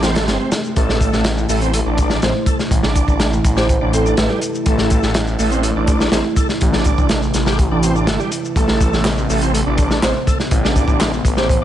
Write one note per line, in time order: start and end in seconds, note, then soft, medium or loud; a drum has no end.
0.00 0.29 A1 loud
0.00 11.64 C3 medium
0.00 11.64 E3 medium
0.00 11.64 A3 medium
0.00 0.75 C4 medium
0.00 0.14 C4 loud
0.00 snare loud
0.00 closed hi-hat medium
0.00 shaker medium
0.15 0.26 A3 loud
0.15 snare loud
0.15 closed hi-hat medium
0.15 shaker soft
0.26 0.37 G1 medium
0.26 0.38 C4 medium
0.26 snare medium
0.26 closed hi-hat medium
0.26 shaker soft
0.40 0.50 C4 medium
0.52 snare loud
0.52 closed hi-hat medium
0.52 shaker medium
0.65 shaker soft
0.76 1.09 A1 loud
0.76 1.24 A3 medium
0.76 8.55 E4 medium
0.76 kick loud
0.76 closed hi-hat medium
0.76 shaker soft
0.89 snare medium
1.01 kick medium
1.01 closed hi-hat medium
1.01 shaker medium
1.13 1.45 A1 medium
1.13 snare soft
1.13 shaker soft
1.24 snare loud
1.24 closed hi-hat medium
1.24 shaker soft
1.38 shaker soft
1.49 1.82 A1 loud
1.49 1.61 A3 loud
1.49 open hi-hat medium
1.49 shaker medium
1.61 1.73 C4 loud
1.61 closed hi-hat soft
1.61 shaker soft
1.74 1.80 A3 medium
1.74 closed hi-hat medium
1.74 shaker soft
1.86 2.18 A1 medium
1.86 2.09 D4 medium
1.98 kick medium
1.98 closed hi-hat medium
1.98 shaker medium
2.10 2.21 D4 loud
2.10 snare medium
2.10 shaker soft
2.22 2.32 A1 medium
2.22 2.33 C4 medium
2.22 2.41 C5 medium
2.22 snare loud
2.22 closed hi-hat medium
2.22 shaker soft
2.46 2.58 A4 medium
2.46 kick loud
2.46 closed hi-hat medium
2.46 shaker medium
2.59 snare soft
2.59 shaker soft
2.71 3.04 A1 loud
2.71 kick loud
2.71 closed hi-hat loud
2.71 shaker soft
2.83 3.31 D4 medium
2.83 snare medium
2.95 kick medium
2.95 closed hi-hat medium
2.95 shaker medium
3.08 3.40 A1 medium
3.08 kick loud
3.08 shaker soft
3.20 snare loud
3.20 closed hi-hat medium
3.20 shaker soft
3.33 shaker soft
3.45 3.77 A1 loud
3.45 kick medium
3.45 closed hi-hat medium
3.45 shaker medium
3.57 3.67 G4 loud
3.57 3.65 C5 medium
3.57 snare soft
3.57 shaker soft
3.69 3.77 C5 medium
3.69 kick loud
3.69 closed hi-hat medium
3.69 shaker soft
3.81 4.14 A1 medium
3.81 3.92 D4 medium
3.93 4.05 C4 medium
3.93 4.02 A4 medium
3.93 closed hi-hat medium
3.93 shaker medium
4.06 4.16 D4 loud
4.06 4.14 A4 medium
4.06 shaker soft
4.17 4.27 A1 medium
4.17 4.30 A3 medium
4.17 4.55 B4 medium
4.17 snare loud
4.17 closed hi-hat medium
4.17 shaker soft
4.29 4.40 G3 medium
4.41 closed hi-hat medium
4.41 shaker medium
4.55 shaker soft
4.66 4.99 A1 loud
4.66 5.14 A3 medium
4.66 kick loud
4.66 closed hi-hat medium
4.66 shaker soft
4.78 snare soft
4.90 kick loud
4.90 closed hi-hat medium
4.90 shaker medium
5.03 5.35 A1 medium
5.03 snare soft
5.03 shaker soft
5.14 snare loud
5.14 closed hi-hat medium
5.14 shaker soft
5.28 shaker soft
5.39 5.72 A1 loud
5.39 5.51 A3 loud
5.39 open hi-hat medium
5.39 shaker medium
5.51 5.62 C4 loud
5.51 closed hi-hat soft
5.51 shaker soft
5.63 5.70 A3 medium
5.63 closed hi-hat medium
5.63 shaker soft
5.76 6.08 A1 medium
5.76 6.00 D4 medium
5.87 kick loud
5.87 closed hi-hat medium
5.87 shaker medium
6.00 6.11 D4 loud
6.00 snare soft
6.00 shaker soft
6.12 6.22 A1 medium
6.12 6.24 C4 medium
6.12 snare loud
6.12 closed hi-hat medium
6.12 shaker soft
6.36 6.48 A4 medium
6.36 kick loud
6.36 closed hi-hat medium
6.36 shaker medium
6.49 snare soft
6.49 shaker soft
6.61 6.94 A1 loud
6.61 kick loud
6.61 closed hi-hat medium
6.61 shaker soft
6.73 7.21 D4 medium
6.73 snare medium
6.84 kick loud
6.84 closed hi-hat medium
6.84 shaker medium
6.98 7.31 A1 medium
6.98 kick loud
6.98 shaker soft
7.09 snare loud
7.09 closed hi-hat medium
7.09 shaker soft
7.22 shaker soft
7.34 7.67 A1 loud
7.34 snare soft
7.34 closed hi-hat medium
7.34 shaker medium
7.46 7.58 G4 loud
7.46 snare medium
7.46 shaker soft
7.59 kick loud
7.59 closed hi-hat medium
7.59 shaker soft
7.71 8.09 A1 medium
7.71 7.83 D4 medium
7.83 7.95 C4 medium
7.83 closed hi-hat medium
7.83 shaker medium
7.96 8.06 D4 loud
7.96 shaker soft
8.07 8.18 G1 medium
8.07 8.20 A3 medium
8.07 snare loud
8.07 closed hi-hat medium
8.07 shaker soft
8.20 8.31 G3 loud
8.20 shaker soft
8.32 closed hi-hat medium
8.32 shaker medium
8.45 shaker soft
8.56 8.89 A1 loud
8.56 9.04 A3 medium
8.56 11.64 B3 medium
8.56 kick loud
8.56 closed hi-hat medium
8.56 shaker soft
8.68 snare medium
8.81 kick loud
8.81 closed hi-hat medium
8.81 shaker medium
8.93 9.26 A1 medium
8.93 snare soft
8.93 shaker soft
9.05 snare loud
9.05 clap loud
9.05 closed hi-hat medium
9.05 shaker soft
9.18 shaker soft
9.30 9.62 A1 loud
9.30 9.41 A3 loud
9.30 open hi-hat medium
9.30 shaker medium
9.41 9.53 C4 loud
9.41 closed hi-hat soft
9.41 shaker soft
9.54 9.61 A3 medium
9.54 closed hi-hat medium
9.54 shaker soft
9.67 9.99 A1 loud
9.67 9.90 D4 medium
9.78 kick loud
9.78 closed hi-hat medium
9.78 shaker medium
9.91 10.02 D4 loud
9.91 snare medium
9.91 shaker soft
10.03 10.13 A1 medium
10.03 10.14 C4 medium
10.03 10.22 C5 medium
10.03 snare loud
10.03 clap loud
10.03 closed hi-hat medium
10.03 shaker soft
10.27 10.38 A4 medium
10.27 kick loud
10.27 closed hi-hat medium
10.27 shaker medium
10.40 snare soft
10.40 shaker soft
10.51 10.84 A1 loud
10.51 kick loud
10.51 closed hi-hat medium
10.51 shaker soft
10.64 11.12 D4 medium
10.64 snare medium
10.76 kick medium
10.76 closed hi-hat medium
10.76 shaker medium
10.88 11.20 A1 medium
10.88 kick medium
10.88 shaker soft
11.01 snare loud
11.01 clap loud
11.01 closed hi-hat medium
11.01 shaker soft
11.13 shaker soft
11.25 11.57 A1 loud
11.25 kick loud
11.25 closed hi-hat medium
11.25 shaker medium
11.37 11.48 G4 loud
11.37 11.45 C5 medium
11.37 snare soft
11.37 shaker soft
11.49 11.57 C5 medium
11.49 kick loud
11.49 closed hi-hat medium
11.49 shaker soft